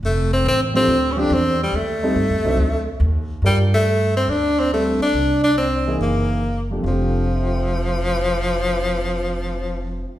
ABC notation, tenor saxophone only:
X:1
M:4/4
L:1/16
Q:"Swing" 1/4=141
K:F
V:1 name="Tenor saxophone"
A,2 C2 C2 C3- C/2 _D/2 =D2 C2 G,2 | A,12 z4 | G,2 A,4 C2 D2 C2 A,2 D2- | D2 D2 C4 B,6 z2 |
F,16- | F,16 |]